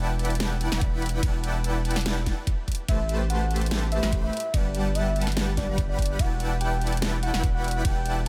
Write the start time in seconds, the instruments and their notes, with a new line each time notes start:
Already playing: sub bass E1, supersaw synth E4 B4 D5 F#5 G5 A5
0.19 closed hi-hat
0.25 closed hi-hat
0.30 closed hi-hat
0.35 closed hi-hat
0.40 snare, closed hi-hat, ride
0.61 closed hi-hat
0.72 sub bass E1, supersaw synth E4 B4 D5 F#5 B5, snare
0.81 kick, closed hi-hat
1.02 closed hi-hat
1.06 closed hi-hat
1.09 closed hi-hat
1.23 sub bass E1, supersaw synth E4 B4 D5 F#5 G5 A5, kick, closed hi-hat, ride
1.44 closed hi-hat
1.64 closed hi-hat
1.85 closed hi-hat
1.91 closed hi-hat
1.96 snare, closed hi-hat
2.01 closed hi-hat
2.06 snare, closed hi-hat, ride
2.26 kick, snare, closed hi-hat
2.47 kick, closed hi-hat
2.68 kick, closed hi-hat
2.72 closed hi-hat
2.75 closed hi-hat
2.88 sub bass A1, supersaw synth A3 G4 B4 C5 A5, soft synth lead E5, kick, closed hi-hat, ride
3.09 closed hi-hat
3.30 soft synth lead F#5, closed hi-hat
3.51 closed hi-hat
3.56 closed hi-hat
3.62 closed hi-hat
3.66 closed hi-hat
3.71 snare, closed hi-hat, ride
3.92 soft synth lead E5, closed hi-hat
4.03 sub bass A1, supersaw synth A3 G4 B4 C5 B5, snare
4.12 kick, closed hi-hat
4.23 soft synth lead E5
4.33 closed hi-hat
4.37 closed hi-hat
4.40 closed hi-hat
4.54 sub bass G1, supersaw synth G3 G4 B4 F#5 A5, soft synth lead D5, kick, closed hi-hat, ride
4.75 closed hi-hat
4.95 soft synth lead E5, closed hi-hat
5.16 closed hi-hat
5.22 closed hi-hat
5.27 snare, closed hi-hat
5.32 closed hi-hat
5.37 snare, closed hi-hat, ride
5.57 soft synth lead D5, kick, snare, closed hi-hat
5.68 sub bass G1, supersaw synth G3 G4 B4 F#5 B5
5.78 kick, closed hi-hat
5.89 soft synth lead D5
5.99 kick, closed hi-hat
6.02 closed hi-hat
6.06 closed hi-hat
6.19 sub bass E1, supersaw synth E4 B4 F#5 G5 A5, soft synth lead F#5, kick, closed hi-hat, ride
6.40 closed hi-hat
6.61 soft synth lead G5, closed hi-hat
6.81 closed hi-hat
6.87 closed hi-hat
6.92 closed hi-hat
6.97 closed hi-hat
7.02 snare, closed hi-hat, ride
7.23 soft synth lead F#5, closed hi-hat
7.34 sub bass E1, supersaw synth E4 B4 D5 F#5 G5 B5, snare
7.43 kick, closed hi-hat
7.54 soft synth lead F#5
7.64 closed hi-hat
7.68 closed hi-hat
7.71 closed hi-hat
7.85 sub bass E1, supersaw synth E4 B4 D5 F#5 G5 A5, soft synth lead G5, kick, closed hi-hat, ride
8.06 closed hi-hat